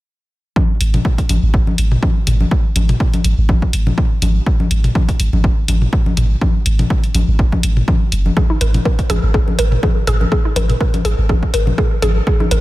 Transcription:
0.56 kick loud
0.56 high conga soft
0.81 0.99 G#1 medium
0.81 open hi-hat medium
0.94 mid tom medium
0.94 open hi-hat soft
0.94 high conga soft
1.05 kick loud
1.18 kick medium
1.18 open hi-hat soft
1.29 1.39 G#1 loud
1.29 open hi-hat medium
1.29 high conga soft
1.43 1.60 G#1 loud
1.54 kick loud
1.67 high conga soft
1.78 1.97 G#1 medium
1.78 open hi-hat medium
1.92 mid tom medium
2.03 kick loud
2.03 high conga soft
2.27 2.45 G#1 loud
2.27 mid tom medium
2.27 open hi-hat medium
2.40 high conga soft
2.51 kick loud
2.76 2.94 G#1 medium
2.76 open hi-hat medium
2.76 high conga soft
2.89 mid tom medium
2.89 open hi-hat soft
3.00 kick loud
3.14 open hi-hat soft
3.14 high conga soft
3.24 3.34 G#1 loud
3.24 open hi-hat medium
3.38 3.55 G#1 loud
3.49 kick loud
3.49 high conga soft
3.62 kick medium
3.73 3.92 G#1 medium
3.73 open hi-hat medium
3.87 mid tom medium
3.87 high conga soft
3.98 kick loud
4.22 4.40 G#1 loud
4.22 open hi-hat medium
4.22 high conga soft
4.46 kick loud
4.60 high conga soft
4.71 4.89 G#1 medium
4.71 open hi-hat medium
4.84 mid tom medium
4.84 open hi-hat soft
4.95 kick loud
4.95 high conga soft
5.09 kick medium
5.09 open hi-hat soft
5.20 5.29 G#1 loud
5.20 open hi-hat medium
5.33 5.50 G#1 loud
5.33 high conga soft
5.44 kick loud
5.68 5.87 G#1 medium
5.68 open hi-hat loud
5.68 high conga soft
5.82 mid tom medium
5.93 kick loud
6.06 high conga soft
6.17 6.36 G#1 loud
6.17 mid tom medium
6.17 open hi-hat medium
6.41 kick loud
6.41 high conga soft
6.66 6.84 G#1 medium
6.66 open hi-hat medium
6.79 mid tom medium
6.79 open hi-hat soft
6.79 high conga soft
6.90 kick loud
7.04 open hi-hat soft
7.15 7.24 G#1 loud
7.15 open hi-hat medium
7.15 high conga soft
7.28 7.45 G#1 loud
7.39 kick loud
7.52 kick medium
7.52 high conga soft
7.63 7.82 G#1 medium
7.63 open hi-hat medium
7.77 mid tom medium
7.88 kick loud
7.88 high conga soft
8.12 8.31 F#1 medium
8.12 open hi-hat medium
8.26 high conga soft
8.37 8.41 G#4 medium
8.37 kick loud
8.37 high conga soft
8.50 8.56 D#4 medium
8.61 8.79 G#1 medium
8.61 8.68 A#4 medium
8.61 open hi-hat medium
8.74 mid tom medium
8.74 open hi-hat soft
8.74 high conga soft
8.85 8.88 A#4 medium
8.85 kick loud
8.99 kick medium
8.99 open hi-hat soft
9.10 9.20 G#1 loud
9.10 9.13 G#4 loud
9.10 open hi-hat medium
9.10 high conga soft
9.23 9.40 G#1 loud
9.34 9.39 G#4 medium
9.34 kick loud
9.48 high conga soft
9.59 9.77 G#1 medium
9.59 9.66 A#4 medium
9.59 open hi-hat medium
9.72 mid tom medium
9.83 9.86 G#4 medium
9.83 kick loud
9.83 high conga soft
10.07 10.26 G#1 loud
10.07 10.12 G#4 loud
10.07 mid tom medium
10.07 open hi-hat medium
10.21 high conga soft
10.32 10.36 G#4 medium
10.32 kick loud
10.45 10.51 D#4 medium
10.56 10.75 G#1 loud
10.56 10.63 A#4 medium
10.56 open hi-hat medium
10.56 high conga soft
10.70 mid tom medium
10.70 open hi-hat soft
10.81 10.83 A#4 medium
10.81 kick loud
10.94 open hi-hat soft
10.94 high conga soft
11.05 11.15 G#1 loud
11.05 11.08 G#4 loud
11.05 open hi-hat medium
11.18 11.35 G#1 loud
11.29 11.34 G#4 medium
11.29 kick loud
11.29 high conga soft
11.43 kick medium
11.54 11.72 G#1 medium
11.54 11.61 A#4 medium
11.54 open hi-hat medium
11.67 mid tom medium
11.67 high conga soft
11.78 11.81 G#4 medium
11.78 kick loud
12.02 12.21 G#1 loud
12.02 12.07 G#4 loud
12.02 open hi-hat medium
12.02 high conga soft
12.27 12.32 G#4 medium
12.27 kick loud
12.40 12.46 D#4 medium
12.40 high conga soft
12.51 12.61 G#1 loud
12.51 12.58 A#4 medium
12.51 open hi-hat medium

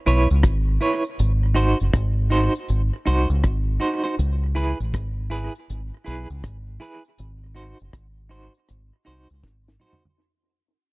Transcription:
0.06 0.27 B1 medium
0.06 0.28 E4 medium
0.06 0.28 B4 medium
0.06 0.28 C#5 medium
0.06 closed hi-hat medium
0.30 0.43 C#2 medium
0.30 closed hi-hat soft
0.43 0.77 G#1 medium
0.43 kick loud
0.43 cross-stick loud
0.43 closed hi-hat medium
0.81 1.02 E4 medium
0.81 1.03 B4 medium
0.81 1.03 C#5 medium
0.81 closed hi-hat medium
1.05 closed hi-hat medium
1.19 1.72 G#1 loud
1.19 closed hi-hat loud
1.54 1.77 D#4 medium
1.54 1.77 F#4 medium
1.54 1.77 C5 medium
1.54 closed hi-hat medium
1.80 1.93 F#1 medium
1.80 closed hi-hat soft
1.94 2.47 G#1 medium
1.94 kick loud
1.94 cross-stick loud
1.94 closed hi-hat medium
2.30 2.52 D#4 medium
2.30 2.52 F#4 medium
2.30 2.53 C5 loud
2.30 closed hi-hat medium
2.55 closed hi-hat medium
2.68 2.90 G#1 medium
2.68 closed hi-hat medium
3.06 3.27 C2 medium
3.06 3.27 D#4 medium
3.06 3.28 F#4 medium
3.06 3.28 C5 medium
3.06 closed hi-hat medium
3.30 3.42 C#2 medium
3.30 closed hi-hat soft
3.44 3.77 G#1 medium
3.44 kick loud
3.44 cross-stick medium
3.44 closed hi-hat medium
3.80 4.02 D#4 medium
3.80 4.02 F#4 medium
3.80 4.03 C5 medium
3.80 closed hi-hat medium
4.04 4.15 D#4 medium
4.04 4.14 F#4 medium
4.04 4.14 C5 medium
4.04 closed hi-hat soft
4.19 4.72 C#2 loud
4.19 closed hi-hat medium
4.55 4.77 E4 medium
4.55 4.77 G#4 medium
4.55 4.77 B4 loud
4.55 closed hi-hat medium
4.80 4.92 A1 medium
4.80 closed hi-hat soft
4.94 5.47 G#1 medium
4.94 kick loud
4.94 cross-stick loud
4.94 closed hi-hat medium
5.30 5.52 E4 medium
5.30 5.52 G#4 loud
5.30 5.53 B4 medium
5.30 closed hi-hat medium
5.55 closed hi-hat medium
5.70 5.90 G#1 medium
5.70 closed hi-hat medium
6.04 6.27 B1 loud
6.04 6.27 E4 medium
6.04 6.27 G#4 medium
6.04 6.27 B4 loud
6.04 closed hi-hat medium
6.30 6.42 C#2 loud
6.30 closed hi-hat soft
6.44 6.77 G#1 medium
6.44 kick loud
6.44 cross-stick loud
6.44 closed hi-hat medium
6.80 7.02 E4 medium
6.80 7.02 G#4 medium
6.80 7.03 B4 medium
6.80 closed hi-hat medium
7.05 closed hi-hat medium
7.18 7.72 G#1 loud
7.18 closed hi-hat medium
7.55 7.77 D#4 medium
7.55 7.77 F#4 medium
7.55 7.77 C5 medium
7.55 closed hi-hat medium
7.79 7.93 F#1 medium
7.79 closed hi-hat soft
7.93 8.47 G#1 medium
7.93 kick loud
7.93 cross-stick loud
7.93 closed hi-hat medium
8.29 8.51 D#4 medium
8.29 8.52 F#4 medium
8.29 8.52 C5 medium
8.29 closed hi-hat medium
8.54 closed hi-hat medium
8.68 8.90 G#1 medium
8.68 cross-stick medium
8.68 closed hi-hat medium
9.05 9.27 C2 medium
9.05 9.27 D#4 medium
9.05 9.27 F#4 medium
9.05 9.28 C5 loud
9.05 closed hi-hat medium
9.30 9.42 C#2 medium
9.30 closed hi-hat soft
9.43 9.76 G#1 medium
9.43 kick loud
9.43 snare medium
9.68 snare medium
9.80 10.02 D#4 medium
9.80 10.02 F#4 medium
9.80 10.02 C5 medium
9.80 mid tom medium
9.93 floor tom loud
10.05 floor tom medium

